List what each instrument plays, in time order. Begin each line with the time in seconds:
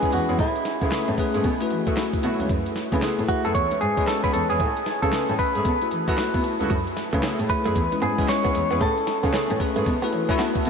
Already playing: tine electric piano G#3 C#4 E4 B4
0.02 horn section G#3 B3 C#4 E4 G#4, kick, closed hi-hat
0.12 cello E2, clean electric guitar F#4, closed hi-hat
0.28 cello E2, horn section G#3 B3 C#4 E4 G#4, closed hi-hat
0.39 cello A2, clean electric guitar E4, kick, closed hi-hat
0.55 closed hi-hat
0.65 snare, closed hi-hat
0.81 cello C#3, horn section G#3 A3 B3 C#4 G#4, tine electric piano A3 C#4 G#4 B4, kick, closed hi-hat
0.91 horn section G#3 A3 B3 C#4 G#4, snare, clap, closed hi-hat
1.08 cello A2, closed hi-hat
1.18 tine electric piano A3 C#4 G#4 B4, kick, closed hi-hat
1.34 cello G#2, horn section G#3 A3 B3 C#4 G#4, closed hi-hat
1.44 cello B2, kick, closed hi-hat
1.60 tine electric piano A3 E4 F#4 B4, closed hi-hat
1.70 cello E3, closed hi-hat
1.86 horn section F#3 A3 B3 E4 F#4, kick, closed hi-hat
1.97 tine electric piano E5, snare, clap, closed hi-hat
2.13 kick, closed hi-hat
2.23 cello B2, horn section F#3 A3 B3 E4 F#4, tine electric piano C#5, closed hi-hat
2.40 cello C#2, tine electric piano B4, closed hi-hat
2.49 cello F#2, kick, closed hi-hat
2.66 closed hi-hat
2.76 snare, closed hi-hat
2.91 cello C#3, horn section G#3 A3 B3 E4 G#4, tine electric piano A3 E4 G#4 B4, kick, closed hi-hat
3.02 horn section G#3 A3 B3 E4 G#4, snare, clap, closed hi-hat
3.19 cello A2, closed hi-hat
3.28 tine electric piano A3 E4 G#4 B4, clean electric guitar F#4, kick, closed hi-hat
3.44 cello F#2, horn section G#3 A3 B3 E4 G#4, clean electric guitar A4, closed hi-hat
3.55 cello E2, clean electric guitar C#5, kick, closed hi-hat
3.71 tine electric piano G#3 C#4 E4 B4, closed hi-hat
3.81 cello G#2, clean electric guitar G#4, closed hi-hat
3.97 tine electric piano G#3 C#4 E4 B4, horn section G#3 B3 C#4 E4 G#4, kick, closed hi-hat
4.07 clean electric guitar A4, snare, clap, closed hi-hat
4.23 horn section G#3 B3 C#4 E4 G#4, clean electric guitar B4, kick, closed hi-hat
4.33 cello E2, clean electric guitar A4, closed hi-hat
4.49 cello E2, horn section G#3 B3 C#4 E4 G#4, clean electric guitar G#4, closed hi-hat
4.60 cello A2, kick, closed hi-hat
4.77 closed hi-hat
4.86 snare, closed hi-hat
5.02 cello C#3, horn section G#3 A3 B3 C#4 G#4, tine electric piano A3 C#4 G#4 B4, clean electric guitar A4, kick, closed hi-hat
5.12 horn section G#3 A3 B3 C#4 G#4, snare, clap, closed hi-hat
5.29 cello A2, closed hi-hat
5.39 tine electric piano A3 C#4 G#4 B4, clean electric guitar B4, kick, closed hi-hat
5.54 cello G#2, horn section G#3 A3 B3 C#4 G#4, closed hi-hat
5.65 cello B2, kick, closed hi-hat
5.81 tine electric piano A3 E4 F#4 B4, closed hi-hat
5.91 cello E3, closed hi-hat
6.07 horn section F#3 A3 B3 E4 F#4, tine electric piano A3 E4 F#4 B4, kick, closed hi-hat
6.18 snare, clap, closed hi-hat
6.34 cello B3, kick, closed hi-hat
6.44 closed hi-hat
6.60 cello C#2, horn section F#3 A3 B3 E4 F#4, closed hi-hat
6.70 cello F#2, clean electric guitar F#3, kick, closed hi-hat
6.87 closed hi-hat
6.97 muted clean electric guitar stroke, snare, closed hi-hat
7.12 cello C#3, horn section G#3 A3 B3 E4 G#4, clean electric guitar A3, tine electric piano A3 E4 G#4 B4, kick, closed hi-hat
7.23 horn section G#3 A3 B3 E4 G#4, clean electric guitar C#4, snare, clap, closed hi-hat
7.39 cello A2, muted clean electric guitar stroke, closed hi-hat
7.49 tine electric piano A3 E4 G#4 C#5, clean electric guitar B4, kick, closed hi-hat
7.65 cello F#2, horn section G#3 A3 B3 E4 G#4, clean electric guitar A3, closed hi-hat
7.76 cello E2, kick, closed hi-hat
7.92 tine electric piano G#3 C#4 E4 B4, closed hi-hat
8.02 cello G#2, clean electric guitar B3 G#4, closed hi-hat
8.18 horn section G#3 B3 C#4 E4 G#4, tine electric piano G#3 C#4 E4 B4, kick, closed hi-hat
8.28 clean electric guitar C#5, snare, clap, closed hi-hat
8.44 horn section G#3 B3 C#4 E4 G#4, clean electric guitar B3, kick, closed hi-hat
8.55 cello E2, muted clean electric guitar stroke, closed hi-hat
8.70 cello E2, horn section G#3 B3 C#4 E4 G#4, clean electric guitar B3, closed hi-hat
8.81 cello A2, clean electric guitar A3 A4, kick, closed hi-hat
8.98 closed hi-hat
9.07 muted clean electric guitar stroke, snare, closed hi-hat
9.23 cello C#3, horn section G#3 A3 B3 C#4 G#4, tine electric piano A3 C#4 G#4 B4, clean electric guitar B3, kick, closed hi-hat
9.33 horn section G#3 A3 B3 C#4 G#4, clean electric guitar C#4, snare, clap, closed hi-hat
9.50 cello A2, muted clean electric guitar stroke, closed hi-hat
9.60 tine electric piano A3 C#4 G#4 B4, kick, closed hi-hat
9.76 cello G#2, horn section G#3 A3 B3 C#4 G#4, clean electric guitar A3, closed hi-hat
9.86 cello B2, kick, closed hi-hat
10.02 tine electric piano A3 E4 F#4 B4, clean electric guitar B3, closed hi-hat
10.12 cello E3, muted clean electric guitar stroke, closed hi-hat
10.28 horn section F#3 A3 B3 E4 F#4, tine electric piano A3 E4 F#4 B4, clean electric guitar C#4, kick, closed hi-hat
10.39 clean electric guitar B3, tine electric piano A5, snare, clap, closed hi-hat
10.55 tine electric piano F#5, muted clean electric guitar stroke, kick, closed hi-hat
10.65 cello B2, horn section F#3 A3 B3 E4 F#4, closed hi-hat